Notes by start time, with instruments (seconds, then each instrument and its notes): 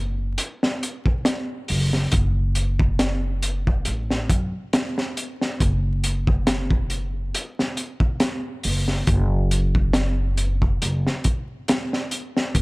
Already playing: upright bass F#1
0.38 closed hi-hat
0.63 snare
0.83 closed hi-hat
1.06 kick
1.25 snare, closed hi-hat
1.68 upright bass F#1, open hi-hat
1.93 snare
2.12 upright bass F#1, kick, closed hi-hat
2.55 closed hi-hat
2.79 kick
2.99 snare, closed hi-hat
3.42 closed hi-hat
3.67 kick
3.85 upright bass A1, closed hi-hat
4.10 snare
4.30 upright bass F#2, kick, closed hi-hat
4.73 snare, closed hi-hat
4.98 snare
5.17 closed hi-hat
5.41 snare
5.60 upright bass F#1, kick, closed hi-hat
6.04 closed hi-hat
6.27 kick
6.47 snare, closed hi-hat
6.71 kick
6.90 closed hi-hat
7.34 closed hi-hat
7.59 snare
7.77 closed hi-hat
8.00 kick
8.20 snare, closed hi-hat
8.63 upright bass F#1, open hi-hat
8.88 snare
9.07 upright bass F#1, kick, closed hi-hat
9.51 closed hi-hat
9.75 kick
9.93 snare, closed hi-hat
10.37 closed hi-hat
10.62 kick
10.82 upright bass F#1, closed hi-hat
11.07 snare
11.24 kick, closed hi-hat
11.68 snare, closed hi-hat
11.93 snare
12.11 closed hi-hat
12.37 snare
12.55 upright bass F#1, kick, closed hi-hat